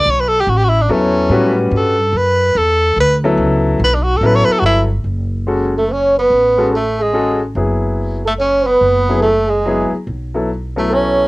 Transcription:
0.00 D5
0.06 B1
0.10 C#5
0.20 B4
0.28 A4
0.40 G4
0.47 A1 F#4
0.57 G4
0.64 F#4
0.69 E4
0.81 D4
0.88 E2 F#3 B3 C#4 E4 A4
1.29 A2 G3 C#4 F#4 B4
1.71 G2
1.77 A4
2.13 F#2
2.17 B4
2.55 E2 A4
2.96 D2
3.00 B4
3.24 F#3 B3 E4 A4
3.37 C#2
3.79 B1
3.84 B4
3.94 D4
4.03 F#4
4.16 A4
4.21 A1 F#3 B3 E4 A4
4.26 B4
4.35 C#5
4.45 B4
4.52 A4
4.59 G1 F#4
4.66 E4
5.04 F#1
5.47 G#3 C#4 F#4 A4
5.76 A3 A4
5.92 C#4 C#5
6.18 B3 B4
6.30 A1
6.58 G#3 C#4 F#4 A4
6.73 A3 A4
7.00 G#3 G#4
7.13 G#3 C#4 F#4 A4
7.55 F#1 F#3 B3 E4 G#4
8.25 A3 A4
8.38 C#4 C#5
8.64 B3 B4
8.81 F#1
9.09 F#3 B3 E4 G#4
9.20 A3 A4
9.47 G#3 G#4
9.66 F#3 B3 E4 G#4
9.91 muted upright bass stroke
10.07 B1
10.34 F#3 B3 E4 A4
10.76 F#3 A3 B3 E4 A4
10.92 C#4 C#5

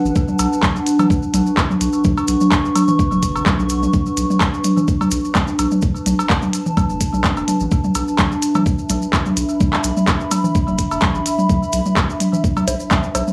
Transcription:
Already playing: D4 B4 F#5 A5
0.05 A1, maracas
0.16 B1, kick, maracas
0.28 high tom, maracas
0.39 B1, closed hi-hat, cowbell, maracas
0.53 maracas
0.63 kick, clap, high tom, maracas
0.76 maracas
0.87 closed hi-hat, maracas
0.99 high tom, cowbell, low conga, maracas
1.10 kick, maracas
1.22 maracas
1.31 B1 C#6, closed hi-hat, high tom, maracas
1.46 maracas
1.57 kick, clap, cowbell, maracas
1.70 high tom, maracas
1.81 B1, closed hi-hat, maracas
1.93 maracas
2.04 B1, kick, high tom, maracas
2.17 cowbell, maracas
2.28 B1, closed hi-hat, maracas
2.41 high tom, maracas
2.52 kick, clap, maracas
2.65 maracas
2.75 closed hi-hat, high tom, cowbell, maracas
2.88 low conga, maracas
2.99 kick, maracas
3.12 F#1, high tom, maracas
3.23 kick, closed hi-hat, maracas
3.35 A1, cowbell, maracas
3.46 kick, clap, high tom, maracas
3.59 B1, maracas
3.69 closed hi-hat, maracas
3.83 high tom, maracas
3.93 B1, kick, high tom, maracas
4.06 maracas
4.17 B1, closed hi-hat, maracas
4.30 high tom, maracas
4.41 kick, clap, cowbell, maracas
4.54 maracas
4.64 closed hi-hat, high tom, maracas
4.77 low conga, maracas
4.88 kick, maracas
5.01 high tom, cowbell, maracas
5.09 B1 A5, closed hi-hat, maracas
5.25 maracas
5.35 kick, clap, high tom, maracas
5.48 maracas
5.59 B1, closed hi-hat, cowbell, maracas
5.71 high tom, maracas
5.82 B1, kick, maracas
5.96 maracas
6.06 B1, closed hi-hat, high tom, maracas
6.19 cowbell, maracas
6.30 kick, clap, maracas
6.42 high tom, maracas
6.53 closed hi-hat, maracas
6.66 low conga, maracas
6.77 kick, high tom, cowbell, maracas
6.90 F#1, maracas
7.01 kick, closed hi-hat, maracas
7.13 B1, high tom, maracas
7.24 kick, clap, maracas
7.37 F#1, cowbell, maracas
7.48 closed hi-hat, high tom, maracas
7.60 A1, maracas
7.71 B1, kick, maracas
7.84 high tom, maracas
7.89 E5
7.95 B1, closed hi-hat, cowbell, maracas
8.08 maracas
8.18 kick, clap, high tom, maracas
8.32 maracas
8.42 closed hi-hat, maracas
8.55 high tom, cowbell, low conga, maracas
8.66 kick, maracas
8.78 maracas
8.87 B1 B5, closed hi-hat, high tom, maracas
9.02 maracas
9.13 kick, clap, cowbell, maracas
9.26 high tom, maracas
9.37 B1, closed hi-hat, maracas
9.49 maracas
9.60 B1, kick, high tom, maracas
9.73 clap, cowbell, maracas
9.84 B1, closed hi-hat, maracas
9.97 high tom, maracas
10.07 kick, clap, maracas
10.20 maracas
10.31 closed hi-hat, high tom, cowbell, maracas
10.44 low conga, maracas
10.55 kick, maracas
10.68 F#1, high tom, maracas
10.78 F#1, kick, closed hi-hat, maracas
10.91 F#1, cowbell, maracas
11.01 kick, clap, high tom, maracas
11.15 A1, maracas
11.26 closed hi-hat, maracas
11.39 high tom, maracas
11.49 B1, kick, high tom, maracas
11.63 maracas
11.73 B1, closed hi-hat, maracas
11.86 high tom, maracas
11.97 kick, clap, cowbell, maracas
12.10 maracas
12.20 closed hi-hat, high tom, maracas
12.33 low conga, maracas
12.44 kick, maracas
12.57 high tom, cowbell, maracas
12.65 B1 A5, closed hi-hat, high bongo, maracas
12.80 maracas
12.91 kick, clap, high tom, maracas
13.03 maracas
13.15 B1, closed hi-hat, cowbell, high bongo, maracas
13.28 high tom, maracas

